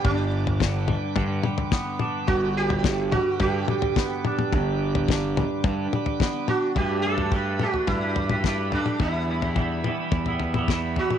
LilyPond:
<<
  \new Staff \with { instrumentName = "Tonewheel organ" } { \time 4/4 \key g \major \tempo 4 = 107 << { d'''1~ | d'''1~ | d'''1 | b''1~ |
b''1 | } \\ { <b' g''>1~ | <b' g''>1~ | <b' g''>1 | <a' g''>1 |
<g' e''>1 | } >> }
  \new Staff \with { instrumentName = "Sitar" } { \time 4/4 \key g \major d'2. r4 | fis'8 g'4 fis'8 g'2~ | g'2. r8 fis'8 | g'8 a'4 fis'8 e'4. d'8 |
e'2.~ e'8 fis'8 | }
  \new Staff \with { instrumentName = "Clean electric guitar" } { \time 4/4 \key g \major <g, d g b d'>4 d8 g8 d8 g8 b8 d'8 | g,4 d8 g8 d8 g8 b8 d'8 | g,4 d8 g8 d8 g8 b8 d'8 | <g a d' g' b'>8 <a d' g' b'>16 <d' g' b'>16 <g a d' g' b'>8 <a d' g' b'>16 <d' g' b'>8 <d' g' b'>8 <d' g' b'>16 <g a d' g' b'>8 <a d' g' b'>16 <d' g' b'>16 |
<e g b e'>8 <e g b e'>16 <g b e'>16 <e g b e'>8 <e g b e'>16 <g b e'>8 <g b e'>8 <g b e'>16 <e g b e'>8 <e g b e'>16 <g b e'>16 | }
  \new Staff \with { instrumentName = "Picked electric bass" } { \clef bass \time 4/4 \key g \major g,,2 g,8 r4. | g,,2 g,8 r4. | g,,2 g,8 r4. | g,2 g,2 |
e,2 e,2 | }
  \new DrumStaff \with { instrumentName = "Drums" } \drummode { \time 4/4 <bd tomfh>8. tomfh16 <bd sn>8 <tomfh toml>8 <bd tomfh>8 toml16 tomfh16 <bd sn>8 toml8 | <bd tomfh>8. tomfh16 <bd sn>8 <tomfh toml>8 <bd tomfh>8 toml16 tomfh16 <bd sn>8 toml16 toml16 | <bd tomfh>8. tomfh16 <bd sn>8 <tomfh toml>8 <bd tomfh>8 toml16 tomfh16 <bd sn>8 toml8 | <bd tomfh>8. tomfh16 bd8 toml16 tomfh16 <bd tomfh>8 tomfh16 <tomfh toml>16 <bd sn>8 tomfh16 toml16 |
<bd tomfh>8. tomfh16 <bd toml>8 toml8 <bd tomfh>16 tomfh16 tomfh16 <tomfh toml>16 <bd sn>8 tomfh16 toml16 | }
>>